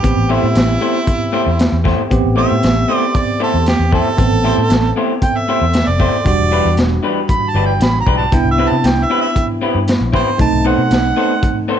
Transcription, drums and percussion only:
0.04 kick, closed hi-hat
0.55 snare, closed hi-hat
1.07 kick, closed hi-hat
1.59 snare, closed hi-hat
1.85 kick, snare
2.11 kick, closed hi-hat
2.63 snare, closed hi-hat
3.15 kick, closed hi-hat
3.66 snare, closed hi-hat
3.92 kick
4.18 kick, closed hi-hat
4.70 snare, closed hi-hat
5.22 kick, closed hi-hat
5.74 snare, closed hi-hat
6.00 kick
6.26 kick, closed hi-hat
6.77 snare, closed hi-hat
7.29 kick, closed hi-hat
7.81 snare, closed hi-hat
8.07 kick
8.32 kick, closed hi-hat
8.84 snare, closed hi-hat
9.36 kick, closed hi-hat
9.88 snare, closed hi-hat
10.14 kick, snare
10.39 kick, closed hi-hat
10.91 snare, closed hi-hat
11.43 kick, closed hi-hat

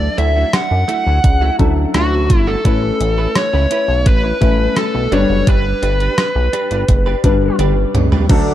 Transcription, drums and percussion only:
0.18 closed hi-hat
0.53 cross-stick, closed hi-hat
0.89 closed hi-hat
1.24 kick, closed hi-hat
1.59 kick, closed hi-hat
1.94 cross-stick, closed hi-hat
2.30 kick, closed hi-hat
2.65 kick, closed hi-hat
3.01 closed hi-hat
3.35 cross-stick, closed hi-hat
3.71 closed hi-hat
4.06 kick, closed hi-hat
4.42 kick, closed hi-hat
4.76 cross-stick, closed hi-hat
5.12 closed hi-hat
5.47 kick, closed hi-hat
5.83 closed hi-hat
6.00 closed hi-hat
6.18 cross-stick, closed hi-hat
6.53 closed hi-hat
6.71 closed hi-hat
6.88 kick, closed hi-hat
7.24 kick, closed hi-hat
7.59 closed hi-hat, high tom
7.95 closed hi-hat, mid tom
8.12 floor tom
8.29 kick, closed hi-hat, crash

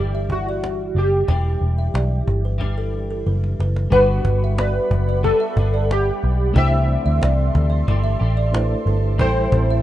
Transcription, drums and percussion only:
0.30 cajon bass
0.64 cajon slap
0.96 cajon slap
1.28 cajon bass
1.62 cajon slap
1.95 cajon slap
2.28 cajon bass
2.44 cajon slap
2.61 cajon bass, cajon slap
2.94 cajon slap
3.26 cajon slap
3.44 cajon slap
3.60 cajon slap
3.76 cajon slap
3.92 cajon bass
4.25 cajon bass
4.58 cajon slap
4.91 cajon bass
5.24 cajon bass, cajon slap
5.57 cajon bass
5.91 cajon slap
6.23 cajon slap
6.56 cajon bass
6.89 cajon slap
7.23 cajon slap
7.55 cajon bass
7.88 cajon bass, cajon slap
8.22 cajon slap
8.54 cajon slap
8.86 cajon slap
9.19 cajon bass
9.52 cajon bass

